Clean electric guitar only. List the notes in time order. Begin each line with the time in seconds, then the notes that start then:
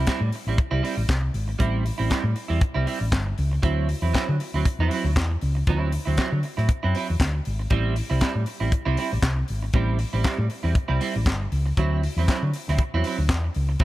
0.08 G3 C4 E4
0.22 muted clean electric guitar stroke
0.34 muted clean electric guitar stroke
0.48 G3 C4 E4
0.58 muted clean electric guitar stroke
0.71 G3 C4 E4
0.83 G3 C4 E4
0.96 muted clean electric guitar stroke
1.09 muted clean electric guitar stroke
1.21 muted clean electric guitar stroke
1.48 muted clean electric guitar stroke
1.59 G3 C4 E4
1.85 muted clean electric guitar stroke
1.98 G3 C4 E4
2.10 G3 C4 E4
2.24 muted clean electric guitar stroke
2.35 muted clean electric guitar stroke
2.48 G3 C4 E4
2.61 muted clean electric guitar stroke
2.74 G3 C4 E4
2.86 G3 C4 E4
3.00 muted clean electric guitar stroke
3.12 muted clean electric guitar stroke
3.26 muted clean electric guitar stroke
3.52 muted clean electric guitar stroke
3.63 F#3 C4 E4
3.89 muted clean electric guitar stroke
4.02 F#3 C4 E4
4.14 F#3 C4 E4
4.28 muted clean electric guitar stroke
4.41 muted clean electric guitar stroke
4.54 F#3 C4 E4
4.67 muted clean electric guitar stroke
4.80 F#3 C4 E4
4.93 F#3 C4 E4
5.06 muted clean electric guitar stroke
5.17 muted clean electric guitar stroke
5.31 muted clean electric guitar stroke
5.55 muted clean electric guitar stroke
5.68 F#3 C4 E4
5.92 muted clean electric guitar stroke
6.05 F#3 C4 E4
6.18 F#3 C4 E4
6.32 muted clean electric guitar stroke
6.44 muted clean electric guitar stroke
6.57 F#3 C4 E4
6.69 muted clean electric guitar stroke
6.83 F#3 C4 E4
6.96 F#3 C4 E4
7.09 muted clean electric guitar stroke
7.21 muted clean electric guitar stroke
7.33 muted clean electric guitar stroke
7.59 muted clean electric guitar stroke
7.70 G3 C4 E4
7.96 muted clean electric guitar stroke
8.10 G3 C4 E4
8.21 G3 C4 E4
8.35 muted clean electric guitar stroke
8.47 muted clean electric guitar stroke
8.60 G3 C4 E4
8.72 muted clean electric guitar stroke
8.85 G3 C4 E4
8.98 G3 C4 E4
9.12 muted clean electric guitar stroke
9.23 muted clean electric guitar stroke
9.37 muted clean electric guitar stroke
9.63 muted clean electric guitar stroke
9.74 G3 C4 E4
9.99 muted clean electric guitar stroke
10.13 G3 C4 E4
10.24 G3 C4 E4
10.38 muted clean electric guitar stroke
10.51 muted clean electric guitar stroke
10.63 G3 C4 E4
10.75 muted clean electric guitar stroke
10.88 G3 C4 E4
11.00 G3 C4 E4
11.15 muted clean electric guitar stroke
11.27 muted clean electric guitar stroke
11.41 muted clean electric guitar stroke
11.66 muted clean electric guitar stroke
11.78 F#3 C4 E4
12.04 muted clean electric guitar stroke
12.18 F#3 C4 E4
12.29 F#3 C4 E4
12.43 muted clean electric guitar stroke
12.56 muted clean electric guitar stroke
12.69 F#3 C4 E4
12.82 muted clean electric guitar stroke
12.94 F#3 C4 E4
13.06 F#3 C4 E4
13.18 muted clean electric guitar stroke
13.30 muted clean electric guitar stroke
13.44 muted clean electric guitar stroke
13.69 muted clean electric guitar stroke
13.80 F#3 C4